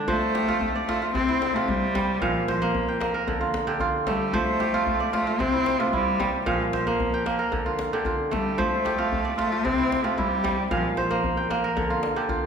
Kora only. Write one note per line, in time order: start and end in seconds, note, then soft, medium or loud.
0.00 0.14 D3 medium
0.00 0.28 A#3 medium
0.00 1.63 D4 medium
0.00 0.48 F4 medium
0.08 1.20 F3 medium
0.08 1.27 C5 medium
0.35 1.76 G4 medium
0.48 0.88 F4 medium
0.76 1.86 D5 medium
0.89 1.02 F4 medium
1.02 1.34 F4 medium
1.15 1.55 C3 medium
1.28 2.28 E4 medium
1.56 2.27 C3 medium
1.56 3.07 F4 medium
1.95 2.27 G3 medium
2.22 3.33 A#2 medium
2.22 3.22 F5 medium
2.48 3.67 C5 medium
2.62 3.00 A#3 medium
2.88 3.82 G5 medium
3.00 4.14 A#3 medium
3.14 4.14 A#4 medium
3.28 3.66 D3 medium
3.41 3.80 F4 medium
3.67 4.39 D3 medium
3.67 4.60 G4 medium
3.80 4.74 F4 medium
4.08 6.07 A3 medium
4.34 5.45 F3 medium
4.34 5.52 C5 medium
4.60 6.01 G4 medium
4.74 5.13 F4 medium
5.00 6.11 D5 medium
5.13 5.26 F4 medium
5.27 5.59 F4 medium
5.40 5.79 C3 medium
5.53 5.93 E4 medium
5.80 6.51 C3 medium
5.80 7.31 F4 medium
5.93 6.52 E4 medium
6.20 6.51 G3 medium
6.46 7.57 A#2 medium
6.46 7.46 F5 medium
6.73 7.92 C5 medium
6.87 7.25 A#3 medium
7.14 8.07 G5 medium
7.26 8.37 A#3 medium
7.39 8.37 A#4 medium
7.52 7.92 D3 medium
7.66 8.05 F4 medium
7.93 8.64 D3 medium
7.93 8.85 G4 medium
8.06 8.98 F4 medium
8.31 10.31 A3 medium
8.58 9.70 F3 medium
8.58 9.77 C5 medium
8.85 10.26 G4 medium
8.98 9.37 F4 medium
9.25 10.36 D5 medium
9.38 9.52 F4 medium
9.52 9.84 F4 medium
9.65 10.03 C3 medium
9.78 10.17 E4 medium
10.04 10.76 C3 medium
10.04 11.56 F4 medium
10.18 10.77 E4 medium
10.44 10.76 G3 medium
10.71 11.82 A#2 medium
10.71 11.71 F5 medium
10.97 12.16 C5 medium
11.11 11.50 A#3 medium
11.37 12.30 G5 medium
11.50 12.46 A#3 medium
11.64 12.46 A#4 medium
11.77 12.15 D3 medium
11.90 12.29 F4 medium
12.16 12.46 D3 medium
12.16 12.46 G4 medium
12.29 12.46 F4 medium